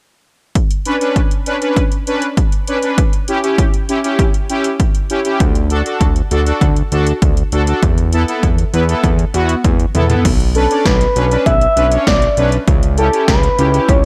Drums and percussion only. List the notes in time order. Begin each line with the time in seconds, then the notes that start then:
0.55 kick, closed hi-hat
0.71 closed hi-hat
0.85 closed hi-hat
1.01 closed hi-hat
1.16 kick, closed hi-hat
1.31 closed hi-hat
1.46 closed hi-hat
1.62 closed hi-hat
1.77 kick, closed hi-hat
1.92 closed hi-hat
2.07 closed hi-hat
2.22 closed hi-hat
2.37 kick, closed hi-hat
2.52 closed hi-hat
2.67 closed hi-hat
2.83 closed hi-hat
2.98 kick, closed hi-hat
3.13 closed hi-hat
3.28 closed hi-hat
3.44 closed hi-hat
3.58 kick, closed hi-hat
3.74 closed hi-hat
3.89 closed hi-hat
4.04 closed hi-hat
4.19 kick, closed hi-hat
4.34 closed hi-hat
4.50 closed hi-hat
4.64 closed hi-hat
4.80 kick, closed hi-hat
4.95 closed hi-hat
5.10 closed hi-hat
5.25 closed hi-hat
5.40 kick, closed hi-hat
5.55 closed hi-hat
5.70 closed hi-hat
5.86 closed hi-hat
6.01 kick, closed hi-hat
6.16 closed hi-hat
6.31 closed hi-hat
6.46 closed hi-hat
6.61 kick, closed hi-hat
6.76 closed hi-hat
6.92 closed hi-hat
7.07 closed hi-hat
7.22 kick, closed hi-hat
7.37 closed hi-hat
7.52 closed hi-hat
7.67 closed hi-hat
7.83 kick, closed hi-hat
7.98 closed hi-hat
8.13 closed hi-hat
8.28 closed hi-hat
8.43 kick, closed hi-hat
8.58 closed hi-hat
8.74 closed hi-hat
8.89 closed hi-hat
9.04 kick, closed hi-hat
9.19 closed hi-hat
9.34 closed hi-hat
9.49 closed hi-hat
9.64 kick, closed hi-hat, high tom
9.80 closed hi-hat
9.95 closed hi-hat, mid tom
10.10 closed hi-hat, floor tom
10.25 kick, closed hi-hat, crash
10.40 closed hi-hat
10.55 closed hi-hat
10.71 closed hi-hat
10.86 kick, snare, closed hi-hat
11.01 closed hi-hat
11.16 closed hi-hat
11.31 closed hi-hat
11.46 kick, closed hi-hat
11.61 closed hi-hat
11.77 closed hi-hat
11.92 closed hi-hat
12.07 kick, snare, closed hi-hat
12.22 closed hi-hat
12.37 closed hi-hat
12.52 closed hi-hat
12.68 kick, closed hi-hat
12.83 closed hi-hat
12.98 closed hi-hat
13.13 closed hi-hat
13.28 kick, snare, closed hi-hat
13.43 closed hi-hat
13.59 closed hi-hat
13.74 closed hi-hat
13.89 kick, closed hi-hat